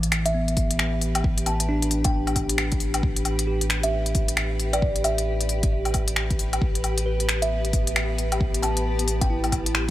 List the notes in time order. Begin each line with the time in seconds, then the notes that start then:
Already playing: A1 E3 G4
0.03 closed hi-hat
0.07 B4
0.12 finger snap, open hi-hat
0.26 E5, closed hi-hat
0.34 B3
0.48 closed hi-hat
0.57 kick, open hi-hat
0.71 closed hi-hat
0.79 finger snap
1.01 open hi-hat
1.15 closed hi-hat, low woodblock
1.24 kick
1.38 closed hi-hat
1.46 A5, open hi-hat, low woodblock
1.60 closed hi-hat
1.69 D4
1.82 closed hi-hat
1.91 open hi-hat
2.04 G5, kick, closed hi-hat
2.27 open hi-hat, low woodblock
2.36 kick, open hi-hat, low woodblock
2.49 closed hi-hat
2.58 finger snap
2.72 kick, closed hi-hat
2.80 open hi-hat
2.94 closed hi-hat, low woodblock
3.03 kick
3.16 closed hi-hat
3.25 open hi-hat, low woodblock
3.39 closed hi-hat
3.47 G4
3.61 closed hi-hat
3.70 finger snap, open hi-hat
3.83 E5, closed hi-hat
4.06 closed hi-hat
4.15 kick, open hi-hat
4.28 closed hi-hat
4.37 finger snap
4.60 open hi-hat
4.73 D5, closed hi-hat, low woodblock
4.82 kick
4.96 closed hi-hat
5.04 E5, open hi-hat, low woodblock
5.18 closed hi-hat
5.41 closed hi-hat
5.49 open hi-hat
5.63 kick, closed hi-hat
5.85 open hi-hat, low woodblock
5.94 kick, open hi-hat, low woodblock
6.08 closed hi-hat
6.16 finger snap
6.31 kick, closed hi-hat
6.39 open hi-hat
6.53 closed hi-hat, low woodblock
6.61 A1 A5, kick
6.75 B3, closed hi-hat
6.84 open hi-hat, low woodblock
6.98 closed hi-hat
7.06 B4
7.20 closed hi-hat
7.29 finger snap, open hi-hat
7.42 E5, closed hi-hat
7.65 closed hi-hat
7.73 kick, open hi-hat
7.87 closed hi-hat
7.96 finger snap
8.18 open hi-hat
8.32 closed hi-hat, low woodblock
8.41 kick
8.54 closed hi-hat
8.63 A5, open hi-hat, low woodblock
8.77 closed hi-hat
8.99 closed hi-hat
9.08 open hi-hat
9.21 G5, kick, closed hi-hat
9.30 E4
9.44 open hi-hat, low woodblock
9.52 kick, open hi-hat, low woodblock
9.66 closed hi-hat
9.75 finger snap